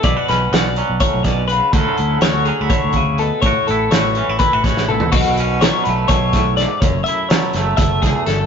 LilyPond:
<<
  \new Staff \with { instrumentName = "Clean electric guitar" } { \time 7/8 \key b \dorian \tempo 4 = 124 d''8 b'8 d''4 cis''8 d''8 b'8 | a'4 cis''8 gis'8 cis''4 a'8 | cis''8 a'8 cis''4 b'8 cis''8 a'8 | fis'4 cis''8 b'8 cis''4 d''8 |
cis''8 e''8 cis''4 e''8 gis'8 a'8 | }
  \new Staff \with { instrumentName = "Clean electric guitar" } { \time 7/8 \key b \dorian << { e'16 fis'16 cis'8 fis'8 cis'2 | <fis cis' e' fis'>8 e'8 fis'8 cis'16 e'4.~ e'16 | fis'8 e'8 fis'8 cis'16 e'16 e'16 fis'8. e'8 | r8 cis'4 a2~ |
a8 e'4 a2 | } \\ { b,4. fis8 a,8 b,8 cis8 | d4. fis8 d8 cis8 b,8 | a,4. e4. e,8 | b,4 fis4 b,8 a,8 gis,8 |
fis,4 fis4. e,8 fis,8 | } >> }
  \new Staff \with { instrumentName = "Fingered electric bass" } { \clef bass \time 7/8 \key b \dorian b,,16 r16 b,,8 b,,8. b,,16 r16 b,,4~ b,,16 | d,16 r16 d,8 d,8. d,16 r16 d,4~ d,16 | a,,16 r16 a,,8 a,,8. a,,16 r16 a,,4~ a,,16 | b,,4. b,,8 b,,4. |
fis,,8 r4 fis,,8 fis,,8 cis,16 r16 g,,8 | }
  \new DrumStaff \with { instrumentName = "Drums" } \drummode { \time 7/8 <hh bd>8 <hh sn>8 <hh sn>8 hh8 <hh bd>8 <hh bd sn>8 hh8 | <hh bd>8 hh8 <hh sn>8 hh8 <hh bd>8 <hh bd>8 hh8 | <hh bd>8 hh8 <hh sn>8 hh8 <hh bd>8 <hh bd sn>16 sn16 toml16 tomfh16 | <cymc bd>8 hh8 <hh sn>8 hh8 <hh bd sn>8 <hh bd sn>8 <hh sn>8 |
<hh bd>8 hh8 <hh sn>8 <hh sn>8 <hh bd sn>8 <hh bd sn>8 <hh sn>8 | }
>>